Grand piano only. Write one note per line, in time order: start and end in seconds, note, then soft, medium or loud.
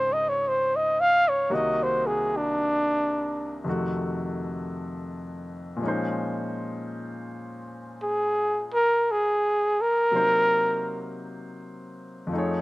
0.00 1.48 C#2 soft
0.00 1.50 G#2 soft
0.00 1.51 C#3 soft
0.00 1.49 D#3 soft
0.00 1.52 G#3 soft
0.00 1.52 C4 soft
0.00 1.52 D#4 soft
0.00 1.53 F4 medium
1.50 3.65 C2 soft
1.50 3.63 C3 soft
1.50 3.65 D#3 soft
1.50 3.66 A#3 medium
1.50 3.66 F#4 medium
3.64 5.80 F2 medium
3.64 5.80 C3 soft
3.64 5.81 D#3 soft
3.64 5.81 A3 soft
3.69 5.82 F#4 medium
5.77 10.11 A#2 medium
5.77 10.11 F3 medium
5.82 10.13 G#3 medium
5.82 10.14 C#4 soft
5.86 10.13 D#4 medium
5.86 10.14 C5 medium
10.11 12.30 C3 soft
10.11 12.30 F#3 soft
10.11 12.31 A#3 soft
10.11 12.32 D#4 soft
10.16 12.32 C5 medium
12.27 12.62 F2 medium
12.27 12.62 F3 soft
12.32 12.62 A3 soft
12.32 12.62 D#4 medium
12.32 12.62 G#4 soft
12.38 12.62 C#5 medium